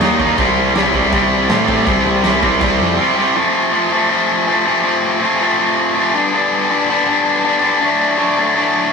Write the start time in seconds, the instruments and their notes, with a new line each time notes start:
0.00 picked electric bass D#2, distorted electric guitar D#3 G3 A#3 D#4, snare, crash
0.20 distorted electric guitar D#3 G3 A#3 D#4, kick
0.38 picked electric bass C2, distorted electric guitar C3 G3 C4 E4, kick, crash
0.75 picked electric bass C2, distorted electric guitar C3 G3 C4 E4, snare, crash
0.94 picked electric bass C2, distorted electric guitar C3 G3 C4 E4, kick
1.12 picked electric bass C2, distorted electric guitar C3 G3 C4 E4, kick, crash
1.49 picked electric bass A2, distorted electric guitar C3 G3 C4 E4, snare, crash
1.68 distorted electric guitar C3 G3 C4 E4, kick
1.86 picked electric bass C2, distorted electric guitar C3 G3 C4 E4, kick, crash
2.06 picked electric bass C2
2.24 picked electric bass C2, distorted electric guitar C3 G3 C4 E4, snare, crash
2.42 picked electric bass C2, distorted electric guitar C3 G3 C4 E4, kick
2.61 picked electric bass C2, distorted electric guitar C3 G3 C4 E4, kick, crash
2.81 picked electric bass F2
2.99 distorted electric guitar C3 G3 C4 E4
3.17 distorted electric guitar C3 G3 C4 E4
3.35 distorted electric guitar F2 C3 F3 A3 C4
3.71 distorted electric guitar F2 C3 F3 A3 C4
3.91 distorted electric guitar F2 C3 F3 A3 C4
4.10 distorted electric guitar F2 C3 F3 A3 C4
4.46 distorted electric guitar F2 C3 F3 A3 C4
4.66 distorted electric guitar F2 C3 F3 A3 C4
4.83 distorted electric guitar F2 C3 F3 A3 C4
5.21 distorted electric guitar F2 C3 F3 A3 C4
5.40 distorted electric guitar F2 C3 F3 A3 C4
5.58 distorted electric guitar F2 C3 F3 A3 C4
5.96 distorted electric guitar F2 C3 F3 A3 C4
6.14 distorted electric guitar G2 D3 G3 B3 D4
6.33 distorted electric guitar G2 D3 G3 B3 D4
6.70 distorted electric guitar G2 D3 G3 B3 D4
6.89 distorted electric guitar G2 D3 G3 B3 D4
7.06 distorted electric guitar G2 D3 G3 B3 D4
7.44 distorted electric guitar G2 D3 G3 B3 D4
7.63 distorted electric guitar G2 D3 G3 B3 D4
7.81 distorted electric guitar D3 F#3 A3 D4
8.17 distorted electric guitar D3 F#3 A3 D4
8.37 distorted electric guitar D3 F#3 A3 D4
8.55 distorted electric guitar D3 F#3 A3 D4